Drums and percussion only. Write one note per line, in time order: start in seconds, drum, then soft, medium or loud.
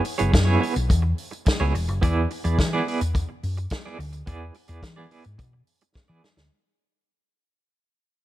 0.05 open hi-hat medium
0.19 closed hi-hat medium
0.34 kick loud
0.34 snare loud
0.34 closed hi-hat medium
0.63 open hi-hat medium
0.76 closed hi-hat medium
0.90 kick loud
0.90 closed hi-hat medium
1.18 open hi-hat medium
1.33 closed hi-hat soft
1.46 kick loud
1.46 snare loud
1.46 closed hi-hat medium
1.75 open hi-hat medium
1.89 closed hi-hat soft
2.03 kick loud
2.03 closed hi-hat medium
2.30 open hi-hat medium
2.45 closed hi-hat soft
2.59 kick loud
2.59 snare loud
2.59 closed hi-hat medium
2.88 open hi-hat medium
3.01 closed hi-hat medium
3.15 kick loud
3.15 closed hi-hat medium
3.43 open hi-hat medium
3.58 closed hi-hat soft
3.70 kick loud
3.70 snare loud
3.70 closed hi-hat medium
4.00 open hi-hat medium
4.13 closed hi-hat soft
4.27 kick loud
4.27 closed hi-hat medium
4.54 open hi-hat medium
4.68 closed hi-hat soft
4.83 kick loud
4.83 snare loud
4.83 closed hi-hat medium
5.11 open hi-hat medium
5.24 closed hi-hat medium
5.39 kick loud
5.39 closed hi-hat medium
5.67 open hi-hat medium
5.81 closed hi-hat soft
5.95 kick loud
5.95 snare medium
6.24 snare medium
6.37 snare medium